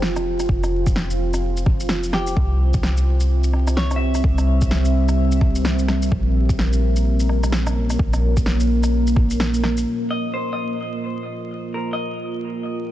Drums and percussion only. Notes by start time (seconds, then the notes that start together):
0.02 snare
0.16 cross-stick, shaker
0.40 cross-stick, shaker
0.49 kick
0.64 cross-stick, shaker
0.86 kick, shaker
0.96 snare
1.10 shaker
1.34 cross-stick, shaker
1.57 shaker
1.66 kick, cross-stick
1.80 shaker
1.89 snare
2.04 shaker
2.13 cross-stick, snare
2.27 shaker
2.37 kick
2.74 kick, shaker
2.83 snare
2.97 shaker
3.20 shaker
3.44 shaker
3.54 cross-stick
3.68 cross-stick, shaker
3.77 snare
3.91 cross-stick, shaker
4.15 cross-stick, shaker
4.24 kick
4.38 cross-stick, shaker
4.61 kick, shaker
4.71 snare
4.85 shaker
5.09 cross-stick, shaker
5.32 shaker
5.41 kick, cross-stick
5.56 shaker
5.65 snare
5.79 shaker
5.88 cross-stick, snare
6.02 shaker
6.12 kick
6.49 kick, shaker
6.59 snare
6.73 shaker
6.96 shaker
7.20 shaker
7.29 cross-stick
7.44 cross-stick, shaker
7.52 snare
7.67 cross-stick, shaker
7.90 cross-stick, shaker
7.99 kick
8.13 cross-stick, shaker
8.37 kick, shaker
8.46 snare
8.60 shaker
8.83 cross-stick, shaker
9.07 shaker
9.16 kick, cross-stick
9.31 shaker
9.40 snare
9.54 shaker
9.64 cross-stick, snare
9.77 shaker